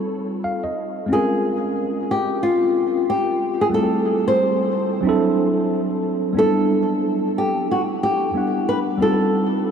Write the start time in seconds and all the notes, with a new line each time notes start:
Already playing: G3 C4 D#4 F4 A4
0.44 F5
0.64 D#5
1.06 G#3 C4 C#4
1.12 F4 G#4 A#4
2.11 G4
2.43 F4
3.10 G4
3.61 G#4
3.69 G3 A3 C4
3.74 E4 G#4 A4
3.84 A4
4.28 C5
5.01 F#3 C4
5.05 D4 E4 A4
6.33 G3 B3
6.37 D4 E4 A4
7.38 G4
7.71 F#4
8.03 G4
8.34 G3 B3 D4 E4 F#5
8.69 B4
8.98 G3 C4 D#4
9.02 F4 G4 A4
9.12 A4